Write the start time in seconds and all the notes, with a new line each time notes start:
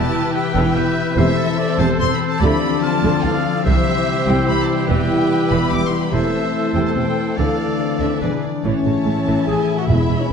Already playing: E3 G3 E4 G4 B4 A5 E6
0.33 G4 B4 G5 E6
0.54 E1 E2 E3 D4 G5
0.75 E1 E2 E3 E4 G4 B4 E5 G6
1.17 E1 E2 C3 E3 A3 C4 E4 A4 C5 E5 E6
1.37 C4 A4
1.58 A4 D5
1.79 E1 E2 C3 C5 A5
2.00 E1 E2 C3 A4 C5 C6 E6
2.14 B5
2.29 A5
2.40 D2 D3 F3 A3 D4 E4 F4 G4 A4 D5 B5 E6
2.63 F3
2.82 F4 A4 A5 F6
3.03 D2 D3 F4
3.23 D2 E3 A4 D5 F5 F6
3.46 F3
3.65 C2 C3 E3 G3 C4 E4 G4 C5 E5 E6
3.87 G3
4.08 C5
4.27 C2 C3 G4 G5
4.47 C2 C3 C5 B5
4.62 A5
4.70 G3
4.76 G5
4.88 E1 E2 E3 B3 G4 B4 G5 E6
5.31 G4
5.50 E1 E2 E3 B5
5.72 E1 E2 E3 G4 D6
5.86 C6
6.01 B5
6.12 E1 E2 C3 E3 A3 C4 E4 A4 C5 E5 E6
6.55 A4
6.75 E1 E2 C3 G5
6.87 A5
6.96 E1 E2 C3 A4 G5
7.36 D2 D3 E3 A3 D4 A4 D5 F5 E6
7.59 A3
7.80 C4 D5
8.01 D2 D3 A4 E5
8.21 E1 E2 D3 E3 G#3 B3 D4 E4 G#4 B4 D5
8.44 E4 B4
8.63 A1 A2 E3 A3 C#4 E4 C#5 E5 A5
8.85 A1 A2 C#3 A3
9.06 A1 A2 C#3 E3
9.26 A1 A2 E3 A3
9.47 A1 A2 C#3 E3 G#4 G#5
9.70 A3
9.77 F#4 F#5
9.87 E1 E2 E3 G#3 E4 E5 B5
10.10 E1 E2 E3 B3
10.19 C#4 C#5
10.29 B4